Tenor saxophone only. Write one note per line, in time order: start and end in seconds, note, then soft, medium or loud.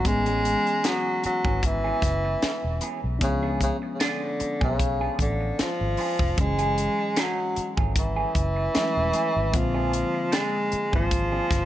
0.07 0.88 G#3 loud
0.86 1.25 F#3 medium
1.26 1.67 F#3 medium
1.66 2.96 E3 medium
3.23 3.59 C#3 medium
3.63 3.78 C#3 medium
3.95 4.04 C#3 medium
4.03 4.62 D3 medium
4.64 5.16 C#3 medium
5.22 5.63 D3 medium
5.61 6.39 F3 loud
6.41 7.22 G#3 medium
7.20 7.71 F#3 medium
7.99 9.58 E3 loud
9.56 10.36 F3 medium
10.34 10.94 G#3 medium
10.96 11.65 F3 loud